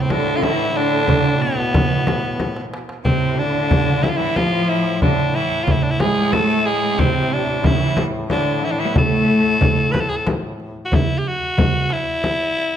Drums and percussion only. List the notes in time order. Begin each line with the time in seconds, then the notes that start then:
0.10 darbuka tek, frame drum
0.43 darbuka tek, frame drum
1.08 frame drum, darbuka dum
1.74 frame drum, darbuka dum
2.07 darbuka tek, frame drum
2.40 darbuka tek, frame drum
2.56 darbuka ka
2.74 darbuka tek
2.89 darbuka ka
3.05 frame drum, darbuka dum
3.71 frame drum, darbuka dum
4.03 darbuka tek, frame drum
4.36 darbuka tek, frame drum
5.02 frame drum, darbuka dum
5.67 darbuka dum, frame drum
6.00 darbuka tek, frame drum
6.33 darbuka tek, frame drum
6.99 darbuka dum, frame drum
7.64 darbuka dum, frame drum
7.97 darbuka tek, frame drum
8.30 darbuka tek, frame drum
8.96 frame drum, darbuka dum
9.61 darbuka dum, frame drum
9.94 darbuka tek, frame drum
10.27 darbuka tek, frame drum
10.60 darbuka ka
10.92 darbuka dum, frame drum
11.58 darbuka dum, frame drum
11.90 darbuka tek
12.24 darbuka tek, frame drum
12.58 darbuka ka